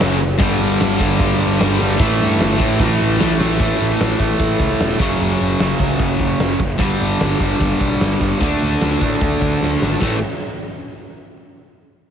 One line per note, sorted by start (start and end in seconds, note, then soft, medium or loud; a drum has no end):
0.00 0.39 F#1 loud
0.00 0.18 F#2 medium
0.00 0.20 F#2 medium
0.00 0.19 C#3 medium
0.00 0.20 C#3 medium
0.00 0.18 F#3 medium
0.00 0.19 F#3 loud
0.00 0.20 F#3 medium
0.00 snare loud
0.39 0.59 G1 loud
0.39 1.78 G2 medium
0.39 1.17 G2 loud
0.39 1.19 D3 medium
0.39 1.79 D3 loud
0.39 1.20 G3 loud
0.39 1.78 G3 loud
0.39 kick loud
0.39 open hi-hat medium
0.61 0.80 G1 medium
0.80 0.99 G1 loud
0.80 snare loud
0.80 open hi-hat medium
0.97 1.19 G1 loud
0.97 1.59 D3 medium
0.97 1.57 G3 medium
0.97 kick medium
1.01 1.56 G2 medium
1.19 1.58 G1 loud
1.19 1.98 G2 medium
1.19 1.99 D3 medium
1.19 1.99 G3 medium
1.19 kick loud
1.19 open hi-hat medium
1.57 1.79 G1 loud
1.57 1.97 G2 medium
1.57 1.96 D3 medium
1.57 1.98 G3 medium
1.57 snare loud
1.57 open hi-hat medium
1.79 1.99 G1 medium
1.79 2.00 G2 medium
1.79 1.98 D3 medium
1.79 1.98 G3 medium
1.99 2.19 A1 loud
1.99 3.38 A2 medium
1.99 2.78 A2 medium
1.99 2.79 E3 loud
1.99 3.39 E3 medium
1.99 2.79 A3 loud
1.99 3.37 A3 medium
1.99 kick loud
1.99 open hi-hat medium
2.20 2.39 G2 loud
2.40 2.60 G1 medium
2.40 snare loud
2.40 open hi-hat medium
2.57 2.79 A2 loud
2.57 3.18 E3 medium
2.57 3.17 A3 medium
2.57 kick medium
2.61 3.17 A2 medium
2.79 2.99 A1 loud
2.79 3.58 A2 medium
2.79 3.59 E3 medium
2.79 3.59 A3 medium
2.79 kick loud
2.79 snare medium
3.00 3.19 A1 loud
3.18 3.58 A1 medium
3.18 3.57 A2 medium
3.18 3.59 E3 medium
3.18 snare loud
3.22 3.60 A3 medium
3.39 3.57 A2 medium
3.39 3.59 E3 medium
3.39 3.58 A3 loud
3.39 snare loud
3.58 3.73 A1 medium
3.58 4.18 A2 medium
3.58 4.19 E3 medium
3.58 4.18 A3 medium
3.58 kick loud
3.58 open hi-hat medium
3.80 3.93 A1 medium
3.80 open hi-hat medium
4.00 4.13 A1 medium
4.00 snare loud
4.00 open hi-hat medium
4.19 4.33 A1 medium
4.19 5.00 A2 medium
4.19 4.99 E3 medium
4.19 4.98 A3 medium
4.19 kick medium
4.19 open hi-hat medium
4.39 4.53 A1 medium
4.39 kick loud
4.39 open hi-hat medium
4.60 4.72 C#2 medium
4.60 kick medium
4.60 open hi-hat medium
4.80 4.93 E1 medium
4.80 snare loud
4.80 open hi-hat medium
4.98 5.13 F#1 medium
4.98 5.57 F#2 medium
4.98 5.59 C#3 loud
4.98 5.60 F#3 loud
4.98 kick loud
4.98 open hi-hat medium
5.20 5.33 F#1 medium
5.20 open hi-hat medium
5.40 5.53 F#1 medium
5.40 open hi-hat medium
5.59 5.73 F#1 medium
5.59 6.58 F#2 medium
5.59 6.59 C#3 medium
5.59 6.60 F#3 medium
5.59 snare loud
5.59 open hi-hat medium
5.79 5.93 C#2 medium
5.79 kick medium
5.79 open hi-hat medium
6.00 6.13 F#1 medium
6.00 kick loud
6.00 open hi-hat medium
6.20 6.33 F#1 medium
6.20 kick medium
6.20 open hi-hat medium
6.39 6.53 F#1 loud
6.39 snare loud
6.39 open hi-hat medium
6.59 6.80 F#1 medium
6.59 kick medium
6.59 open hi-hat medium
6.79 6.93 G1 medium
6.79 7.39 G2 medium
6.79 7.39 D3 medium
6.79 7.38 G3 loud
6.79 kick loud
6.79 open hi-hat medium
7.00 7.13 G1 medium
7.00 open hi-hat medium
7.20 7.34 G1 medium
7.20 snare loud
7.20 open hi-hat medium
7.39 7.53 G1 medium
7.39 8.41 G2 medium
7.39 8.39 D3 medium
7.39 8.39 G3 medium
7.39 kick medium
7.39 open hi-hat medium
7.61 7.74 G1 medium
7.61 kick loud
7.61 open hi-hat medium
7.80 7.93 B1 medium
7.80 kick medium
7.80 open hi-hat medium
8.00 8.14 G1 medium
8.00 snare loud
8.00 open hi-hat medium
8.21 8.34 G1 medium
8.21 kick medium
8.21 open hi-hat medium
8.40 8.54 D2 medium
8.40 9.00 D3 medium
8.40 9.01 A3 medium
8.40 9.00 D4 medium
8.40 kick loud
8.40 open hi-hat medium
8.61 8.74 D2 medium
8.61 open hi-hat medium
8.81 8.95 D2 medium
8.81 snare loud
8.81 open hi-hat medium
9.01 9.14 A2 medium
9.01 10.00 D3 medium
9.01 10.01 A3 medium
9.01 10.01 D4 medium
9.01 kick medium
9.01 open hi-hat medium
9.21 9.34 D2 medium
9.21 kick loud
9.21 open hi-hat medium
9.41 9.54 D2 medium
9.41 kick medium
9.41 open hi-hat medium
9.62 9.75 D2 medium
9.62 snare medium
9.82 9.95 G#1 medium
9.82 snare medium
10.00 10.21 A1 medium
10.00 10.17 A2 medium
10.00 10.18 E3 medium
10.00 10.18 A3 medium
10.00 kick loud
10.00 snare loud
10.00 china medium